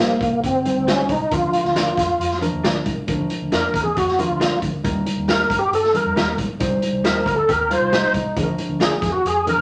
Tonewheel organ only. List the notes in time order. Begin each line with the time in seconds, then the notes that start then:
Already playing: A#3
0.46 C4
0.90 C#4
1.11 D#4
1.34 F4
3.54 A#4
3.83 G#4
3.97 F#4
4.19 F4
5.29 A#4
5.59 G4
5.75 A4
5.96 A#4
7.06 A#4
7.36 A4
7.51 A#4
7.73 C5
8.82 G#4
9.12 F#4
9.27 G#4
9.49 A#4